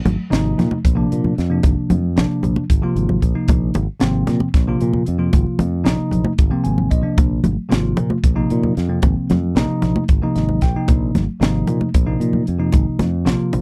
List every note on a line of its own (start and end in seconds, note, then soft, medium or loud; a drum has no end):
0.05 0.15 G#1 medium
0.05 closed hi-hat medium
0.05 high conga medium
0.05 low conga loud
0.30 0.53 G#1 medium
0.30 0.77 C3 medium
0.30 0.77 F3 medium
0.30 0.77 A#3 medium
0.30 0.77 D#4 medium
0.30 snare medium
0.30 closed hi-hat medium
0.58 0.68 A#2 medium
0.58 snare soft
0.58 closed hi-hat soft
0.58 low conga medium
0.71 muted conga medium
0.71 high conga medium
0.85 1.06 A#1 medium
0.85 kick loud
0.85 closed hi-hat medium
0.95 1.33 C3 medium
0.95 1.34 F3 medium
0.95 1.34 A#3 medium
0.95 1.34 D4 medium
1.12 1.32 A#2 medium
1.12 closed hi-hat medium
1.24 high conga medium
1.24 low conga medium
1.38 1.59 F2 medium
1.38 snare soft
1.38 closed hi-hat soft
1.38 low conga soft
1.50 1.96 C3 medium
1.50 1.97 F3 medium
1.50 1.96 A#3 medium
1.50 1.97 D4 medium
1.50 low conga soft
1.63 1.74 G#1 medium
1.63 kick loud
1.63 closed hi-hat medium
1.63 muted conga medium
1.78 muted fingered electric bass stroke soft
1.90 2.19 F2 medium
1.90 closed hi-hat medium
1.90 high conga medium
1.90 low conga medium
2.16 2.28 A#1 loud
2.16 2.62 C3 medium
2.16 2.63 F3 medium
2.16 2.63 A#3 medium
2.16 2.63 D4 medium
2.16 snare medium
2.16 closed hi-hat medium
2.43 2.53 A#1 medium
2.43 closed hi-hat medium
2.43 low conga medium
2.56 muted conga medium
2.56 high conga medium
2.70 2.80 G#1 medium
2.70 kick loud
2.70 closed hi-hat medium
2.82 3.19 C3 medium
2.82 3.20 F3 medium
2.82 3.20 A#3 medium
2.82 3.20 F4 medium
2.96 3.17 G#1 medium
2.96 closed hi-hat medium
3.09 high conga medium
3.09 low conga medium
3.22 3.33 A#1 medium
3.22 kick medium
3.22 closed hi-hat medium
3.22 low conga soft
3.34 3.81 C3 medium
3.34 3.82 F3 medium
3.34 3.82 A#3 medium
3.34 3.82 D#4 medium
3.48 3.69 A#1 medium
3.48 kick loud
3.48 closed hi-hat medium
3.48 muted conga medium
3.74 3.86 G#1 medium
3.74 closed hi-hat medium
3.74 high conga loud
3.74 low conga medium
4.00 4.23 G#1 medium
4.00 4.47 C3 medium
4.00 4.47 F3 medium
4.00 4.47 A#3 medium
4.00 4.47 C4 loud
4.00 snare loud
4.00 closed hi-hat medium
4.27 4.39 A#2 medium
4.27 snare soft
4.27 closed hi-hat medium
4.27 low conga medium
4.40 muted conga medium
4.40 high conga medium
4.54 4.75 A#1 medium
4.54 kick loud
4.54 snare soft
4.54 closed hi-hat medium
4.67 5.05 C3 medium
4.67 5.04 F3 medium
4.67 5.05 A#3 medium
4.67 5.05 F4 medium
4.81 5.02 A#2 medium
4.81 closed hi-hat medium
4.93 high conga medium
4.93 low conga medium
5.06 5.28 F2 medium
5.06 closed hi-hat medium
5.06 low conga soft
5.18 5.65 C3 medium
5.18 5.66 F3 medium
5.18 5.66 A#3 medium
5.18 5.66 F4 medium
5.18 low conga soft
5.33 5.44 G#1 medium
5.33 kick loud
5.33 closed hi-hat medium
5.33 muted conga medium
5.33 low conga soft
5.46 muted fingered electric bass stroke soft
5.46 low conga soft
5.59 5.88 F2 medium
5.59 closed hi-hat medium
5.59 high conga medium
5.59 low conga medium
5.84 5.97 A#1 medium
5.84 6.31 C3 medium
5.84 6.32 F3 medium
5.84 6.32 A#3 medium
5.84 6.32 D#4 loud
5.84 snare medium
5.84 closed hi-hat medium
6.11 6.24 A#1 medium
6.11 closed hi-hat medium
6.11 low conga medium
6.24 muted conga medium
6.24 high conga medium
6.24 low conga soft
6.38 6.49 G#1 medium
6.38 kick loud
6.38 closed hi-hat medium
6.50 6.88 C3 medium
6.50 6.88 F3 medium
6.50 6.89 A#3 medium
6.50 6.89 C4 medium
6.50 low conga soft
6.64 6.87 G#1 medium
6.64 6.89 G#5 medium
6.64 closed hi-hat medium
6.64 low conga soft
6.78 high conga medium
6.78 low conga medium
6.91 7.02 A#1 medium
6.91 7.16 D#5 medium
6.91 kick medium
6.91 closed hi-hat medium
6.91 low conga soft
7.02 7.50 C3 medium
7.02 7.50 F3 medium
7.02 7.50 A#3 medium
7.02 7.51 D4 medium
7.18 7.39 A#1 medium
7.18 kick loud
7.18 closed hi-hat medium
7.18 muted conga loud
7.44 7.56 G#1 medium
7.44 closed hi-hat medium
7.44 high conga loud
7.44 low conga medium
7.69 7.93 G#1 medium
7.69 8.17 C3 medium
7.69 8.17 F3 medium
7.69 8.17 A#3 medium
7.69 8.17 F4 medium
7.69 snare loud
7.69 closed hi-hat medium
7.97 8.09 A#2 medium
7.97 closed hi-hat medium
7.97 low conga medium
8.10 muted conga medium
8.10 high conga medium
8.24 8.45 A#1 medium
8.24 kick loud
8.24 closed hi-hat medium
8.35 8.74 C3 medium
8.35 8.74 F3 medium
8.35 8.74 A#3 medium
8.35 8.74 D#4 medium
8.50 8.72 A#2 medium
8.50 closed hi-hat medium
8.63 high conga medium
8.63 low conga medium
8.77 8.98 F2 medium
8.77 snare soft
8.77 closed hi-hat soft
8.88 9.36 C3 medium
8.88 9.36 F3 medium
8.88 9.36 A#3 medium
8.88 9.36 C4 medium
8.88 low conga soft
9.02 9.14 G#1 medium
9.02 kick medium
9.02 closed hi-hat medium
9.02 muted conga medium
9.17 muted fingered electric bass stroke soft
9.30 9.57 F2 medium
9.30 snare soft
9.30 closed hi-hat medium
9.30 high conga medium
9.30 low conga medium
9.55 9.67 A#1 loud
9.55 10.02 C3 medium
9.55 10.02 F3 medium
9.55 10.03 A#3 medium
9.55 10.03 D#4 loud
9.55 snare medium
9.55 closed hi-hat medium
9.82 9.94 A#1 medium
9.82 snare soft
9.82 closed hi-hat medium
9.82 low conga medium
9.96 muted conga medium
9.96 high conga medium
10.08 10.20 G#1 medium
10.08 kick loud
10.08 closed hi-hat medium
10.22 10.60 C3 medium
10.22 10.60 F3 medium
10.22 10.60 A#3 medium
10.22 10.60 D#4 medium
10.36 10.57 G#1 medium
10.36 10.61 D#5 medium
10.36 snare soft
10.36 closed hi-hat medium
10.49 high conga medium
10.49 low conga medium
10.61 10.73 A#1 medium
10.61 10.87 G5 medium
10.61 kick medium
10.61 snare soft
10.61 closed hi-hat medium
10.75 11.22 C3 medium
10.75 11.22 F3 medium
10.75 11.22 A#3 medium
10.75 11.22 D#4 medium
10.75 low conga soft
10.88 11.10 A#1 medium
10.88 kick loud
10.88 closed hi-hat medium
10.88 muted conga medium
11.15 11.26 G#1 medium
11.15 snare soft
11.15 closed hi-hat medium
11.15 high conga medium
11.15 low conga medium
11.40 11.62 G#1 medium
11.40 11.88 C3 medium
11.40 11.88 F3 medium
11.40 11.88 A#3 medium
11.40 11.88 D#4 medium
11.40 snare medium
11.40 closed hi-hat medium
11.67 11.79 A#2 medium
11.67 closed hi-hat medium
11.67 low conga medium
11.81 muted conga medium
11.81 high conga medium
11.94 12.16 A#1 medium
11.94 kick loud
11.94 closed hi-hat medium
12.06 12.44 C3 medium
12.06 12.45 F3 medium
12.06 12.45 A#3 medium
12.06 12.45 D#4 medium
12.20 12.42 A#2 medium
12.20 closed hi-hat medium
12.33 high conga medium
12.33 low conga medium
12.47 12.69 F2 medium
12.47 closed hi-hat medium
12.47 low conga soft
12.59 13.06 C3 medium
12.59 13.07 F3 medium
12.59 13.07 A#3 medium
12.59 13.07 D#4 medium
12.59 low conga soft
12.72 12.85 G#1 loud
12.72 kick loud
12.72 closed hi-hat medium
12.72 muted conga medium
12.72 low conga soft
12.88 muted fingered electric bass stroke soft
12.99 13.28 F2 medium
12.99 snare soft
12.99 closed hi-hat medium
12.99 high conga medium
12.99 low conga medium
13.25 13.38 A#1 loud
13.25 13.61 C3 medium
13.25 13.61 F3 medium
13.25 13.61 A#3 medium
13.25 13.61 F4 medium
13.25 snare medium
13.25 closed hi-hat medium
13.40 muted fingered electric bass stroke soft
13.53 13.61 A#1 medium
13.53 closed hi-hat medium
13.53 low conga medium